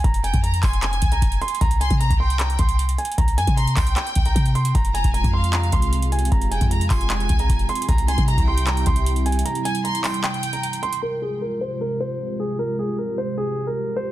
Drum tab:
HH |x--x--x--x--x--x--o--x--x--x--x--x--x--x--x-x-x-|x--x--x--x--x--x-----x--x--x--x--x--x--x--x-x-x-|x--x--x--x--x--x--o--x--x--x--x--x--x--x--x--x--|x--x--x--x--x--x-----x--x--x--x--x--x--x--x-x-x-|
CP |------------------x-----x-----------------------|------------------------x-----------------------|------------------x-----x-----------------------|------------------------x-----------------------|
BD |o--------o--------o-----------o-----o-----------|o--------o-----o--------------o-----------------|o--------o--------o-----------o-----o-----------|o--------o-----o--------------o-----------------|

HH |x--x--x--x--x--x--o--x--x--x--x--x--x--x--x-x-x-|x--x--x--x--x--x-----x--x--x--x--x--x--x--x-x-x-|x--x--x--x--x--x--o--x--x--x--x--x--x--x--x--x--|------------------------------------------------|
CP |------------------x-----x-----------------------|------------------------x-----------------------|------------------x-----x-----------------------|------------------------------------------------|
BD |o--------o--------o-----------o-----o-----------|o--------o-----o--------------o-----------------|------------------------------------------------|------------------------------------------------|

HH |------------------------------------------------|
CP |------------------------------------------------|
BD |------------------------------------------------|